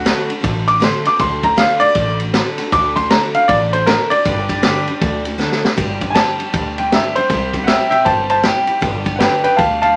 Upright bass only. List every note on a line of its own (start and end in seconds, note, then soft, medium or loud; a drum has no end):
0.00 0.11 D2 loud
0.29 muted upright bass stroke medium
0.44 0.87 A1 medium
1.05 muted upright bass stroke medium
1.19 1.63 D2 medium
1.81 muted upright bass stroke medium
1.95 2.39 A1 medium
2.58 muted upright bass stroke medium
2.73 3.16 D2 loud
3.34 muted upright bass stroke medium
3.49 3.92 A1 loud
4.10 muted upright bass stroke medium
4.25 4.69 G1 medium
4.87 muted upright bass stroke medium
5.01 5.44 D2 loud
5.63 muted upright bass stroke medium
5.78 6.21 G1 medium
6.40 muted upright bass stroke medium
6.54 6.97 D2 medium
7.16 muted upright bass stroke medium
7.29 7.73 C2 loud
7.92 muted upright bass stroke medium
8.06 8.49 G1 medium
8.67 muted upright bass stroke medium
8.83 9.26 G1 loud
9.43 muted upright bass stroke medium
9.59 9.96 D2 medium